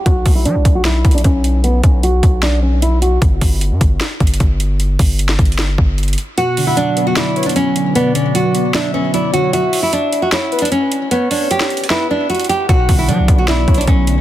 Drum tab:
HH |x-----------o-----------x-----------x-----------x-----------x---x---x---x-----------x-----------|x-----------x-----------x-----------x-----------x-----------------------x-----------x-----------|x-----------o-----------x-----------x-----------x-----------x---x---x---x-----------x-----------|x-----------o-----------x-----------x---x---x---x-----------------------x--x--x--x--x-----------|
SD |------------------------------------------------o-----------------------------------------------|------------------------------------------------o-----------------------------------------------|------------------------------------------------o-----------------------------------------------|------------------------------o-----------------o-----------------------------------------------|
BD |o-----------o-----------------------o-----------------------o-----------o-----------------------|------------o-----------------------o-----------------------------------------------------------|o-----------o-----------------------o-----------------------o-----------o-----------------------|------------o-----------------------o-----------------------o-----------------------------------|

HH |x-----------o-----------x-----------x-----------x-----------x---x---x---x-----------x-----------|x-----------x-----------x-----------x-----------x-----------------------x-----------x-----------|x-----------o-----------x-----------x-----------x-----------x---x---x---x-----------x-----------|x-----------o-----------x-----------x---x---x---x-----------------------x--x--x--x--x-----------|
SD |------------------------------------------------o-----------------------------------------------|------------------------------------------------o-----------------------------------------------|------------------------------------------------o-----------------------------------------------|------------------------------o-----------------o-----------------------------------------------|
BD |------------------------------------------------------------------------------------------------|------------------------------------------------------------------------------------------------|------------------------------------------------------------------------------------------------|------------------------------------------------------------------------------------------------|

HH |x-----------o-----------x-----------x-----------x-----------x---x---x---x-----------x-----------|
SD |------------------------------------------------o-----------------------------------------------|
BD |o-----------o-----------------------o-----------------------o-----------o-----------------------|